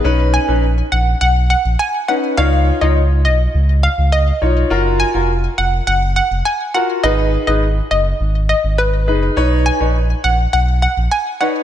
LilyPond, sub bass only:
\new Staff \with { instrumentName = "Sub bass" } { \clef bass \time 4/4 \key b \lydian \tempo 4 = 103 b,,8. ais,,8. ais,,8 b,,8. ais,,16 r4 | cis,8. cis,8. b,,8 cis,8. cis,8. b,,8 | fis,,8. eis,,8. eis,,8 fis,,8. eis,,16 r4 | gis,,8. gis,,8. fis,,8 gis,,8. gis,,8. fis,,8 |
b,,8. ais,,8. ais,,8 b,,8. ais,,16 r4 | }